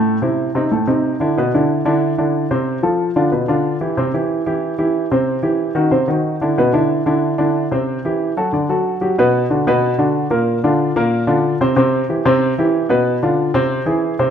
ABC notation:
X:1
M:4/4
L:1/8
Q:1/4=185
K:Clyd
V:1 name="Grand piano"
[A,,A,A] [C,CE]2 [C,C_E] [A,,A,A] [C,CE]2 [D,D=E] | [B,,B,B] [D,DE]2 [D,DE]2 [D,DE]2 [C,Cc]- | [C,Cc] [=F,=FA]2 [D,DF] [B,,B,B] [D,DF]2 [E,EG] | [C,Cc] [E,EG]2 [E,EG]2 [E,EG]2 [C,Cc]- |
[C,Cc] [E,EG]2 [_E,_EF] [C,Cc] [E,E_G]2 [D,D=E] | [B,,B,B] [D,DE]2 [D,DE]2 [D,DE]2 [C,Cc]- | [C,Cc] [E,EG]2 [F,FA] [D,Dd] [F,FA]2 [F,FG] | [B,,B,B]2 [D,DF] [B,,B,B]2 [D,DF]2 [^A,,^A,^A]- |
[^A,,^A,^A] [D,D=F]2 [_B,,_B,_B]2 [D,DF]2 [C,Cc] | [C,Cc]2 [E,EG] [C,Cc]2 [E,EG]2 [B,,B,B]- | [B,,B,B] [D,D=F]2 [C,Cc]2 [E,E^G]2 [^B,,^B,^B] |]